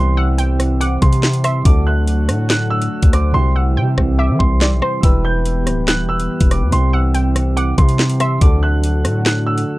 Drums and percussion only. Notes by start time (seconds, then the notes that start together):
0.38 closed hi-hat
0.60 cross-stick, closed hi-hat
0.81 closed hi-hat
1.02 kick, closed hi-hat
1.13 closed hi-hat
1.23 snare, clap
1.33 closed hi-hat
1.44 cross-stick, closed hi-hat
1.65 kick, closed hi-hat
2.08 closed hi-hat
2.29 cross-stick, closed hi-hat
2.50 snare, clap, closed hi-hat
2.82 closed hi-hat
3.02 kick, closed hi-hat
3.13 cross-stick, closed hi-hat
3.98 kick, cross-stick
4.40 kick
4.61 snare, clap
4.82 cross-stick
5.03 kick, closed hi-hat
5.46 closed hi-hat
5.67 cross-stick, closed hi-hat
5.88 snare, clap, closed hi-hat
6.20 closed hi-hat
6.40 kick, closed hi-hat
6.51 cross-stick, closed hi-hat
6.72 closed hi-hat
7.15 closed hi-hat
7.36 cross-stick, closed hi-hat
7.57 closed hi-hat
7.78 kick, closed hi-hat
7.89 closed hi-hat
7.99 snare, clap
8.09 closed hi-hat
8.20 cross-stick, closed hi-hat
8.41 kick, closed hi-hat
8.84 closed hi-hat
9.05 cross-stick, closed hi-hat
9.26 snare, clap, closed hi-hat
9.58 closed hi-hat